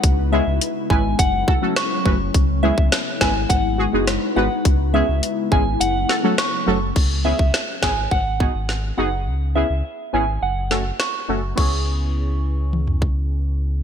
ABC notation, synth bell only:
X:1
M:4/4
L:1/16
Q:1/4=104
K:C#m
V:1 name="Synth bell"
z2 e z3 g z f3 z c'3 z | z2 e z3 g z f3 z3 f z | z2 e z3 g z f3 z c'3 z | z2 e z3 g z f3 z3 f z |
z2 e z3 g z f3 z c'3 z | c'12 z4 |]